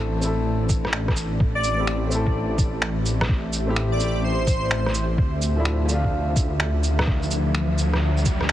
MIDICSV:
0, 0, Header, 1, 7, 480
1, 0, Start_track
1, 0, Key_signature, 0, "minor"
1, 0, Tempo, 472441
1, 1426, Time_signature, 4, 2, 24, 8
1, 8658, End_track
2, 0, Start_track
2, 0, Title_t, "Digital synth lead"
2, 0, Program_c, 0, 84
2, 1576, Note_on_c, 0, 74, 94
2, 1828, Note_off_c, 0, 74, 0
2, 3981, Note_on_c, 0, 74, 92
2, 4230, Note_off_c, 0, 74, 0
2, 4311, Note_on_c, 0, 72, 97
2, 4995, Note_off_c, 0, 72, 0
2, 8658, End_track
3, 0, Start_track
3, 0, Title_t, "Ambient pad"
3, 0, Program_c, 1, 92
3, 0, Note_on_c, 1, 45, 78
3, 0, Note_on_c, 1, 57, 65
3, 0, Note_on_c, 1, 60, 71
3, 0, Note_on_c, 1, 62, 86
3, 0, Note_on_c, 1, 74, 81
3, 1790, Note_on_c, 1, 76, 93
3, 1937, Note_on_c, 1, 67, 77
3, 2950, Note_off_c, 1, 62, 0
3, 2994, Note_off_c, 1, 74, 0
3, 5260, Note_on_c, 1, 50, 77
3, 5265, Note_off_c, 1, 45, 0
3, 5271, Note_off_c, 1, 57, 0
3, 5473, Note_on_c, 1, 62, 76
3, 5581, Note_on_c, 1, 53, 78
3, 5959, Note_off_c, 1, 60, 0
3, 5997, Note_on_c, 1, 69, 72
3, 6831, Note_off_c, 1, 67, 0
3, 8658, Note_off_c, 1, 50, 0
3, 8658, Note_off_c, 1, 53, 0
3, 8658, Note_off_c, 1, 62, 0
3, 8658, Note_off_c, 1, 69, 0
3, 8658, Note_off_c, 1, 76, 0
3, 8658, End_track
4, 0, Start_track
4, 0, Title_t, "Upright piano"
4, 0, Program_c, 2, 0
4, 0, Note_on_c, 2, 57, 85
4, 0, Note_on_c, 2, 60, 82
4, 0, Note_on_c, 2, 64, 79
4, 0, Note_on_c, 2, 69, 95
4, 166, Note_off_c, 2, 57, 0
4, 181, Note_on_c, 2, 57, 83
4, 192, Note_off_c, 2, 60, 0
4, 207, Note_on_c, 2, 60, 78
4, 210, Note_off_c, 2, 64, 0
4, 217, Note_off_c, 2, 69, 0
4, 234, Note_on_c, 2, 64, 74
4, 262, Note_on_c, 2, 69, 92
4, 1394, Note_off_c, 2, 57, 0
4, 1407, Note_off_c, 2, 60, 0
4, 1420, Note_off_c, 2, 64, 0
4, 1434, Note_off_c, 2, 69, 0
4, 1797, Note_on_c, 2, 57, 70
4, 1810, Note_on_c, 2, 60, 65
4, 1825, Note_on_c, 2, 64, 70
4, 1838, Note_on_c, 2, 67, 77
4, 2086, Note_off_c, 2, 57, 0
4, 2102, Note_on_c, 2, 57, 86
4, 2112, Note_off_c, 2, 60, 0
4, 2127, Note_off_c, 2, 64, 0
4, 2128, Note_on_c, 2, 60, 82
4, 2134, Note_off_c, 2, 67, 0
4, 2158, Note_on_c, 2, 64, 78
4, 2183, Note_on_c, 2, 69, 98
4, 3683, Note_off_c, 2, 57, 0
4, 3696, Note_off_c, 2, 60, 0
4, 3711, Note_off_c, 2, 64, 0
4, 3720, Note_on_c, 2, 57, 82
4, 3724, Note_off_c, 2, 69, 0
4, 3732, Note_on_c, 2, 60, 75
4, 3747, Note_on_c, 2, 64, 79
4, 3762, Note_on_c, 2, 67, 94
4, 4009, Note_off_c, 2, 57, 0
4, 4024, Note_on_c, 2, 57, 88
4, 4034, Note_off_c, 2, 60, 0
4, 4048, Note_off_c, 2, 64, 0
4, 4049, Note_on_c, 2, 60, 78
4, 4056, Note_off_c, 2, 67, 0
4, 4077, Note_on_c, 2, 64, 78
4, 4105, Note_on_c, 2, 67, 97
4, 5235, Note_off_c, 2, 57, 0
4, 5248, Note_off_c, 2, 60, 0
4, 5262, Note_off_c, 2, 64, 0
4, 5276, Note_off_c, 2, 67, 0
4, 5647, Note_on_c, 2, 53, 74
4, 5662, Note_on_c, 2, 57, 71
4, 5674, Note_on_c, 2, 62, 69
4, 5686, Note_on_c, 2, 64, 85
4, 5933, Note_off_c, 2, 53, 0
4, 5948, Note_on_c, 2, 53, 89
4, 5959, Note_off_c, 2, 57, 0
4, 5972, Note_off_c, 2, 62, 0
4, 5974, Note_on_c, 2, 57, 81
4, 5978, Note_off_c, 2, 64, 0
4, 6002, Note_on_c, 2, 62, 81
4, 6030, Note_on_c, 2, 65, 100
4, 7526, Note_off_c, 2, 53, 0
4, 7540, Note_off_c, 2, 57, 0
4, 7553, Note_off_c, 2, 62, 0
4, 7568, Note_off_c, 2, 65, 0
4, 8658, End_track
5, 0, Start_track
5, 0, Title_t, "Detuned saw bass"
5, 0, Program_c, 3, 39
5, 0, Note_on_c, 3, 33, 84
5, 1410, Note_off_c, 3, 33, 0
5, 1425, Note_on_c, 3, 33, 88
5, 5249, Note_off_c, 3, 33, 0
5, 5264, Note_on_c, 3, 38, 88
5, 8658, Note_off_c, 3, 38, 0
5, 8658, End_track
6, 0, Start_track
6, 0, Title_t, "Riser"
6, 0, Program_c, 4, 103
6, 5264, Note_on_c, 4, 60, 75
6, 8658, Note_off_c, 4, 60, 0
6, 8658, End_track
7, 0, Start_track
7, 0, Title_t, "Drums"
7, 222, Note_on_c, 9, 69, 59
7, 222, Note_on_c, 9, 82, 53
7, 324, Note_off_c, 9, 69, 0
7, 324, Note_off_c, 9, 82, 0
7, 703, Note_on_c, 9, 69, 73
7, 703, Note_on_c, 9, 82, 55
7, 704, Note_on_c, 9, 36, 104
7, 805, Note_off_c, 9, 69, 0
7, 805, Note_off_c, 9, 82, 0
7, 806, Note_off_c, 9, 36, 0
7, 861, Note_on_c, 9, 37, 33
7, 942, Note_on_c, 9, 26, 107
7, 963, Note_off_c, 9, 37, 0
7, 1044, Note_off_c, 9, 26, 0
7, 1100, Note_on_c, 9, 37, 34
7, 1102, Note_on_c, 9, 36, 60
7, 1183, Note_on_c, 9, 69, 60
7, 1183, Note_on_c, 9, 82, 56
7, 1202, Note_off_c, 9, 37, 0
7, 1203, Note_off_c, 9, 36, 0
7, 1284, Note_off_c, 9, 69, 0
7, 1284, Note_off_c, 9, 82, 0
7, 1424, Note_on_c, 9, 36, 112
7, 1526, Note_off_c, 9, 36, 0
7, 1662, Note_on_c, 9, 69, 72
7, 1662, Note_on_c, 9, 82, 53
7, 1764, Note_off_c, 9, 69, 0
7, 1764, Note_off_c, 9, 82, 0
7, 1903, Note_on_c, 9, 26, 100
7, 2005, Note_off_c, 9, 26, 0
7, 2145, Note_on_c, 9, 69, 61
7, 2145, Note_on_c, 9, 82, 52
7, 2247, Note_off_c, 9, 69, 0
7, 2247, Note_off_c, 9, 82, 0
7, 2302, Note_on_c, 9, 36, 60
7, 2403, Note_off_c, 9, 36, 0
7, 2624, Note_on_c, 9, 36, 101
7, 2626, Note_on_c, 9, 69, 71
7, 2626, Note_on_c, 9, 82, 53
7, 2726, Note_off_c, 9, 36, 0
7, 2728, Note_off_c, 9, 69, 0
7, 2728, Note_off_c, 9, 82, 0
7, 2863, Note_on_c, 9, 26, 101
7, 2965, Note_off_c, 9, 26, 0
7, 3106, Note_on_c, 9, 69, 64
7, 3106, Note_on_c, 9, 82, 55
7, 3208, Note_off_c, 9, 69, 0
7, 3208, Note_off_c, 9, 82, 0
7, 3263, Note_on_c, 9, 37, 60
7, 3343, Note_on_c, 9, 36, 114
7, 3365, Note_off_c, 9, 37, 0
7, 3445, Note_off_c, 9, 36, 0
7, 3585, Note_on_c, 9, 69, 79
7, 3585, Note_on_c, 9, 82, 54
7, 3686, Note_off_c, 9, 69, 0
7, 3686, Note_off_c, 9, 82, 0
7, 3824, Note_on_c, 9, 26, 101
7, 3925, Note_off_c, 9, 26, 0
7, 4063, Note_on_c, 9, 69, 65
7, 4063, Note_on_c, 9, 82, 51
7, 4164, Note_off_c, 9, 69, 0
7, 4164, Note_off_c, 9, 82, 0
7, 4544, Note_on_c, 9, 36, 98
7, 4545, Note_on_c, 9, 69, 75
7, 4545, Note_on_c, 9, 82, 51
7, 4645, Note_off_c, 9, 36, 0
7, 4647, Note_off_c, 9, 69, 0
7, 4647, Note_off_c, 9, 82, 0
7, 4784, Note_on_c, 9, 26, 100
7, 4886, Note_off_c, 9, 26, 0
7, 4942, Note_on_c, 9, 37, 37
7, 5024, Note_on_c, 9, 69, 67
7, 5024, Note_on_c, 9, 82, 51
7, 5044, Note_off_c, 9, 37, 0
7, 5125, Note_off_c, 9, 69, 0
7, 5125, Note_off_c, 9, 82, 0
7, 5264, Note_on_c, 9, 36, 112
7, 5366, Note_off_c, 9, 36, 0
7, 5505, Note_on_c, 9, 69, 80
7, 5505, Note_on_c, 9, 82, 54
7, 5606, Note_off_c, 9, 69, 0
7, 5606, Note_off_c, 9, 82, 0
7, 5744, Note_on_c, 9, 26, 100
7, 5845, Note_off_c, 9, 26, 0
7, 5983, Note_on_c, 9, 69, 68
7, 5983, Note_on_c, 9, 82, 56
7, 6085, Note_off_c, 9, 69, 0
7, 6085, Note_off_c, 9, 82, 0
7, 6142, Note_on_c, 9, 36, 56
7, 6243, Note_off_c, 9, 36, 0
7, 6465, Note_on_c, 9, 36, 99
7, 6465, Note_on_c, 9, 69, 81
7, 6465, Note_on_c, 9, 82, 54
7, 6566, Note_off_c, 9, 36, 0
7, 6567, Note_off_c, 9, 69, 0
7, 6567, Note_off_c, 9, 82, 0
7, 6703, Note_on_c, 9, 26, 99
7, 6805, Note_off_c, 9, 26, 0
7, 6944, Note_on_c, 9, 69, 67
7, 6944, Note_on_c, 9, 82, 54
7, 7045, Note_off_c, 9, 69, 0
7, 7045, Note_off_c, 9, 82, 0
7, 7101, Note_on_c, 9, 37, 62
7, 7186, Note_on_c, 9, 36, 113
7, 7203, Note_off_c, 9, 37, 0
7, 7288, Note_off_c, 9, 36, 0
7, 7342, Note_on_c, 9, 82, 29
7, 7425, Note_off_c, 9, 82, 0
7, 7425, Note_on_c, 9, 69, 74
7, 7425, Note_on_c, 9, 82, 56
7, 7527, Note_off_c, 9, 69, 0
7, 7527, Note_off_c, 9, 82, 0
7, 7666, Note_on_c, 9, 26, 101
7, 7768, Note_off_c, 9, 26, 0
7, 7905, Note_on_c, 9, 69, 64
7, 7905, Note_on_c, 9, 82, 55
7, 8007, Note_off_c, 9, 69, 0
7, 8007, Note_off_c, 9, 82, 0
7, 8062, Note_on_c, 9, 37, 40
7, 8163, Note_off_c, 9, 37, 0
7, 8303, Note_on_c, 9, 82, 32
7, 8386, Note_off_c, 9, 82, 0
7, 8386, Note_on_c, 9, 69, 77
7, 8386, Note_on_c, 9, 82, 56
7, 8387, Note_on_c, 9, 36, 96
7, 8487, Note_off_c, 9, 69, 0
7, 8487, Note_off_c, 9, 82, 0
7, 8489, Note_off_c, 9, 36, 0
7, 8541, Note_on_c, 9, 37, 36
7, 8626, Note_on_c, 9, 26, 99
7, 8643, Note_off_c, 9, 37, 0
7, 8658, Note_off_c, 9, 26, 0
7, 8658, End_track
0, 0, End_of_file